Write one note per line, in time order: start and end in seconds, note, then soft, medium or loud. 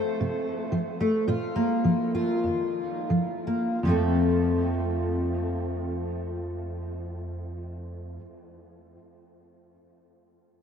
0.00 0.15 F3 medium
0.00 0.99 A3 soft
0.00 1.26 C4 soft
0.00 1.23 C5 soft
0.21 0.67 C3 medium
0.72 1.20 F3 medium
1.00 1.23 A3 soft
1.28 1.78 A#2 medium
1.28 2.14 F4 medium
1.56 3.46 A#3 soft
1.84 2.38 F3 medium
2.15 3.91 F4 soft
2.44 3.02 F2 soft
3.10 3.74 F3 soft
3.47 3.78 A#3 soft
3.83 8.16 F2 soft
3.83 8.18 F3 soft
3.87 8.20 A3 soft
3.87 8.22 C4 soft
3.87 8.24 A4 soft